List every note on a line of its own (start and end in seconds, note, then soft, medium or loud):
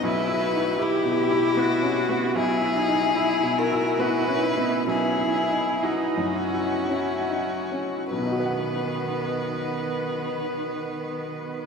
0.04 2.31 B1 soft
0.04 0.80 E4 soft
0.04 0.41 E4 soft
0.04 0.84 B4 medium
0.28 0.70 E4 soft
0.41 0.83 F#4 soft
0.54 0.80 D#4 soft
0.78 1.21 E4 soft
0.78 1.59 G4 soft
0.78 1.18 G4 soft
0.83 2.36 E4 medium
1.05 1.47 B2 soft
1.19 1.59 G4 soft
1.31 1.73 E4 soft
1.57 1.99 B3 soft
1.57 2.38 F#4 medium
1.57 2.37 F#4 soft
1.82 2.09 C#4 soft
2.09 2.35 B3 soft
2.36 4.83 B1 soft
2.36 3.15 E4 soft
2.36 2.75 E4 soft
2.36 3.60 G#4 medium
2.61 3.04 E4 soft
2.77 3.18 D#4 medium
2.88 3.16 D#4 soft
3.15 3.60 E4 soft
3.15 4.01 E4 soft
3.15 3.60 E4 soft
3.43 3.89 B2 soft
3.58 4.02 F#4 soft
3.58 4.01 A#4 medium
3.72 4.17 E4 soft
3.99 4.45 B3 soft
3.99 4.44 E4 soft
3.99 4.45 F#4 soft
3.99 4.87 B4 medium
4.28 4.57 C#4 soft
4.43 4.86 D#4 soft
4.43 4.87 E4 soft
4.57 4.87 B3 soft
4.86 8.09 B1 soft
4.86 5.36 C#4 soft
4.86 5.85 E4 soft
4.86 5.85 G#4 medium
5.18 5.70 E4 soft
5.34 5.84 E4 soft
5.50 5.83 D#4 soft
5.83 6.37 D#4 soft
5.83 6.36 D#4 soft
5.83 6.38 E4 soft
5.83 8.12 F#4 medium
6.17 6.75 F#2 soft
6.35 6.90 C#4 soft
6.35 6.92 C#4 soft
6.53 7.14 E4 soft
6.89 7.54 C#4 soft
6.89 7.80 C#4 soft
6.89 7.51 E4 soft
7.29 7.72 D#4 soft
7.72 8.13 C#4 soft
8.11 11.66 B1 soft
8.11 11.66 D#3 soft
8.11 11.66 B3 soft
8.11 11.66 B4 soft
8.18 11.66 B2 soft
8.26 11.66 D#4 soft
8.32 11.66 F#4 soft
8.40 11.66 B4 soft
8.46 11.66 F#5 soft